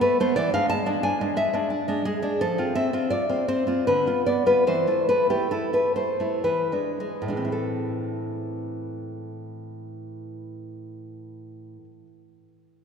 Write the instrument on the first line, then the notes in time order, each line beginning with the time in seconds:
nylon-string guitar
0.01 A3 B4
0.20 A3 B3 C5
0.36 E3 D5
0.53 G#3 D4 F5
0.69 G#3 A5
0.86 G#3 D4
1.03 D4 G#5
1.21 G#3 D4
1.36 G#3 E5
1.53 G#3 D4
1.70 D4
1.88 G#3 D4
2.05 G#3 G#4
2.22 G#3 D4
2.41 F3 A4
2.58 C4 F4
2.75 C4 E5
2.93 C4 F4
3.10 F4 D5
3.30 C4 F4
3.48 C4 C5
3.67 C4 F4
3.87 D3 B4
4.07 B3 F4
4.26 B3 D5
4.46 B3 F4 B4
4.67 E3 C5
4.87 A3 E4
5.09 A3 B4
5.30 A3 E4 G4
5.51 E4 A4
5.73 A3 E4 B4
5.96 A3 C5
6.20 A3 E4
6.44 E3 B4
6.72 G#3 D4
7.00 G#3
7.22 A2
7.28 E3 G#3 D4
7.37 C4
7.45 E4
7.52 A4